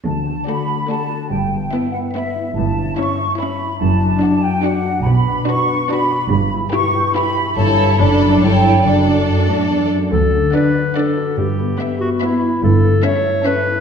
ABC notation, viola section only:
X:1
M:3/4
L:1/8
Q:1/4=143
K:D
V:1 name="Viola section"
z2 A,2 A,2 | z2 B,2 B,2 | z2 C2 C2 | z2 D2 D2 |
z2 D2 D2 | z2 E2 E2 | E2 D2 E2 | D4- D z |
z2 D2 D2 | z2 B,2 B,2 | z2 C2 C2 |]